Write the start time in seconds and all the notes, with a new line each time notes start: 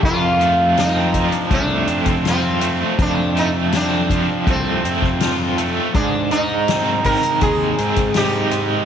0.02 F2 F4, kick, crash
0.39 A3, closed hi-hat
0.76 C4 D#4, snare, closed hi-hat
1.12 F3, kick, closed hi-hat
1.27 D4
1.32 closed hi-hat
1.50 C2 A3 D4, kick, closed hi-hat
1.87 F2 C4, closed hi-hat
2.06 C4, kick, closed hi-hat
2.24 F4, snare, closed hi-hat
2.29 C4
2.61 A3, closed hi-hat
2.98 F2 D4, kick, closed hi-hat
3.35 A3 D#4, closed hi-hat
3.72 C4 D4, snare, closed hi-hat
4.10 F3, kick, closed hi-hat
4.47 C2 A3 C4, kick, closed hi-hat
4.84 F2 C4, closed hi-hat
5.02 kick, snare
5.20 F4, snare, closed hi-hat
5.57 A3, closed hi-hat
5.93 G#2 D4, kick, closed hi-hat
6.31 G#3 D#4, closed hi-hat
6.68 C4, snare, closed hi-hat
7.04 D#3 A#4, kick, closed hi-hat
7.23 closed hi-hat
7.41 D#2 G#3 G#4, kick, closed hi-hat
7.78 G#2 C4, closed hi-hat
7.96 kick, closed hi-hat
8.14 D#4 G4, snare, closed hi-hat
8.51 G#3, closed hi-hat